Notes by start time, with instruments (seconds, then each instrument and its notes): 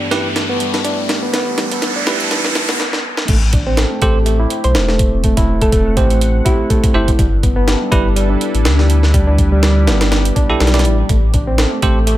Already playing: analog synth pad G2 E3 A3 G4 B4, reed electric piano B3 D4, riser
0.11 tine electric piano E4 G4 B4, snare, closed hi-hat
0.36 snare, closed hi-hat
0.49 reed electric piano B3
0.60 reed electric piano G3, closed hi-hat
0.74 snare, closed hi-hat
0.85 reed electric piano D4, closed hi-hat
1.09 snare, closed hi-hat
1.23 reed electric piano B3
1.33 reed electric piano B3, analog synth pad A4, snare, closed hi-hat, noise sweep
1.58 reed electric piano G3, snare, closed hi-hat
1.72 reed electric piano B3, closed hi-hat
1.82 snare, closed hi-hat
1.96 reed electric piano D4
2.07 tine electric piano E4 G4 B4, snare, closed hi-hat
2.20 closed hi-hat
2.31 snare, closed hi-hat
2.44 snare
2.55 snare, closed hi-hat
2.69 reed electric piano B3, snare, closed hi-hat
2.80 snare
2.93 snare
3.17 snare
3.28 sub bass A1, reed electric piano A3, analog synth pad A3 C4 G4, kick, closed hi-hat, crash
3.53 reed electric piano D4, kick, closed hi-hat
3.67 reed electric piano C4
3.77 reed electric piano A4, snare, closed hi-hat
3.91 reed electric piano A3
4.02 sub bass A1, reed electric piano A3, tine electric piano G4 A4 C5, kick, closed hi-hat
4.26 reed electric piano A3, closed hi-hat
4.40 reed electric piano E4
4.50 closed hi-hat
4.64 sub bass B1, synth pluck C5, closed hi-hat
4.75 sub bass E1, snare, closed hi-hat
4.88 reed electric piano A3, snare
4.99 kick, closed hi-hat
5.24 reed electric piano A3, analog synth pad F#5, kick, closed hi-hat
5.37 reed electric piano E4, kick, closed hi-hat
5.61 reed electric piano A3, synth pluck A4, kick, closed hi-hat
5.72 reed electric piano A3, kick, closed hi-hat
5.97 sub bass A1, reed electric piano C4, tine electric piano G4 A4 C5, kick, closed hi-hat
6.10 closed hi-hat
6.21 closed hi-hat
6.45 reed electric piano E4, synth pluck G4, kick, closed hi-hat
6.70 reed electric piano A3, kick, closed hi-hat
6.84 kick, closed hi-hat
6.94 sub bass G1, synth pluck E4, tine electric piano G4 A4 C5
7.08 kick, closed hi-hat
7.19 sub bass G1, reed electric piano G3, analog synth pad G3 D4 E4 A4 B4, kick, closed hi-hat
7.43 reed electric piano B3, kick, closed hi-hat
7.56 reed electric piano B3
7.67 reed electric piano G4, snare, closed hi-hat
7.81 reed electric piano G3
7.92 sub bass G1, reed electric piano G3, tine electric piano E4 G4 B4, kick, closed hi-hat
8.16 reed electric piano G3, closed hi-hat
8.30 reed electric piano D4
8.41 closed hi-hat
8.54 sub bass A1, closed hi-hat
8.65 sub bass D2, snare, closed hi-hat
8.79 reed electric piano G3, snare
8.90 closed hi-hat
9.03 snare
9.14 reed electric piano G3, analog synth pad G4, kick, closed hi-hat
9.27 reed electric piano D4
9.38 kick, closed hi-hat
9.52 reed electric piano G3
9.63 reed electric piano G3, snare, closed hi-hat
9.87 sub bass G1, reed electric piano B3, snare, closed hi-hat
10.01 snare, closed hi-hat
10.12 snare, closed hi-hat
10.25 closed hi-hat
10.36 reed electric piano D4, kick, closed hi-hat
10.49 sub bass B1, tine electric piano E4 G4 A4
10.60 sub bass B1, reed electric piano G3, snare, closed hi-hat
10.67 snare, closed hi-hat
10.74 tine electric piano E4 G4 D5, snare, closed hi-hat
10.79 snare, closed hi-hat
10.85 sub bass A1, closed hi-hat
11.09 sub bass A1, analog synth pad A3 C4, reed electric piano A3, kick, closed hi-hat
11.34 reed electric piano D4, kick, closed hi-hat
11.47 reed electric piano C4
11.58 reed electric piano A4, snare, closed hi-hat
11.72 reed electric piano A3
11.82 sub bass A1, reed electric piano A3, tine electric piano G4 A4 C5, kick, closed hi-hat
12.07 reed electric piano A3, closed hi-hat